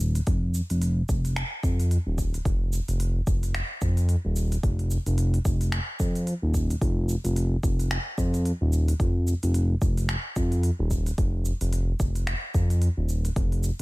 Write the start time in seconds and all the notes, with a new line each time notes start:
Already playing: D#1
0.00 shaker
0.15 open hi-hat, shaker
0.27 F1, kick, open hi-hat, shaker
0.54 shaker
0.70 F1, open hi-hat, shaker
0.82 open hi-hat, shaker
1.09 F1, kick, shaker
1.25 open hi-hat, shaker
1.36 finger snap, open hi-hat, shaker
1.63 F2, kick, shaker
1.80 open hi-hat, shaker
1.91 open hi-hat, shaker
2.06 D#1
2.18 kick, shaker
2.34 open hi-hat, shaker
2.45 F1, kick, open hi-hat, shaker
2.73 shaker
2.88 F1, open hi-hat, shaker
3.00 open hi-hat, shaker
3.27 F1, kick, shaker
3.43 open hi-hat, shaker
3.55 finger snap, open hi-hat, shaker
3.82 F2, kick, shaker
3.97 open hi-hat, shaker
4.09 open hi-hat, shaker
4.25 D#1
4.36 shaker
4.52 open hi-hat, shaker
4.63 F1, kick, open hi-hat, shaker
4.79 open hi-hat
4.91 shaker
5.06 F1, open hi-hat, shaker
5.18 open hi-hat, shaker
5.34 open hi-hat
5.45 F1, kick, shaker
5.61 open hi-hat, shaker
5.72 finger snap, open hi-hat, shaker
6.00 F2, kick, shaker
6.15 open hi-hat, shaker
6.27 open hi-hat, shaker
6.42 D#1
6.54 kick, shaker
6.70 open hi-hat, shaker
6.81 F1, kick, open hi-hat, shaker
7.09 shaker
7.24 F1, open hi-hat, shaker
7.36 open hi-hat, shaker
7.63 F1, kick, shaker
7.80 open hi-hat, shaker
7.91 finger snap, open hi-hat, shaker
8.18 F2, kick, shaker
8.34 open hi-hat, shaker
8.45 open hi-hat, shaker
8.61 D#1
8.73 shaker
8.88 open hi-hat, shaker
9.00 F1, kick, open hi-hat, shaker
9.27 shaker
9.43 F1, open hi-hat, shaker
9.54 open hi-hat, shaker
9.82 F1, kick, shaker
9.98 open hi-hat, shaker
10.09 finger snap, open hi-hat, shaker
10.36 F2, kick, shaker
10.52 open hi-hat, shaker
10.63 open hi-hat, shaker
10.79 D#1
10.91 kick, shaker
11.06 open hi-hat, shaker
11.18 F1, kick, open hi-hat, shaker
11.45 shaker
11.61 F1, open hi-hat, shaker
11.73 open hi-hat, shaker
12.00 F1, kick, shaker
12.15 open hi-hat, shaker
12.27 finger snap, open hi-hat, shaker
12.54 F2, kick, shaker
12.70 open hi-hat, shaker
12.82 open hi-hat, shaker
12.97 D#1
13.09 shaker
13.25 open hi-hat, shaker
13.36 F1, kick, open hi-hat, shaker
13.52 open hi-hat
13.63 shaker